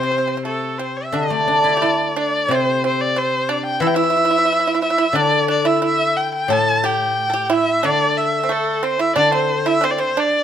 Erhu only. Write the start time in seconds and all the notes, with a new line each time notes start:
Already playing: C5
0.46 A4
0.78 C5
0.97 E5
1.16 D5
2.18 D5
2.55 C5
2.87 C5
3.01 D5
3.18 C5
3.49 D5
3.66 G5
3.81 E5
3.87 G5
3.95 E5
4.82 E5
5.15 D5
5.50 D5
5.67 E5
5.85 E5
6.17 G5
6.34 G5
6.53 A5
6.85 G5
7.45 G5
7.53 E5
7.85 D5
8.17 E5
8.52 A4
8.84 C5
9.00 E5
9.16 D5
9.33 C5
9.67 E5
9.84 C5
9.91 D5
9.99 C5
10.20 D5